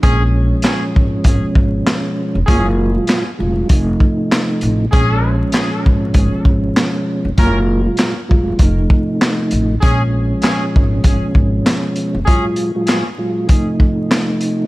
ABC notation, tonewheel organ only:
X:1
M:4/4
L:1/16
Q:"Swing 16ths" 1/4=98
K:Bbm
V:1 name="Tonewheel organ" clef=bass
[B,,F,A,D]8 [_C,F,A,D]6- [C,F,A,D] z | [B,,G,A,F]3 [B,,G,A,F]2 z [B,,G,A,F]2 [C,F,=A,E]6- [C,F,A,E] z | [B,,F,A,D]8 [_C,F,A,D]6- [C,F,A,D] z | [B,,G,A,F]3 [B,,G,A,F]2 z [B,,G,A,F]2 [C,F,=A,E]6- [C,F,A,E] z |
[B,,F,A,D]8 [_C,F,A,D]6- [C,F,A,D] z | [B,,G,A,F]3 [B,,G,A,F]2 z [B,,G,A,F]2 [C,F,=A,E]6- [C,F,A,E] z |]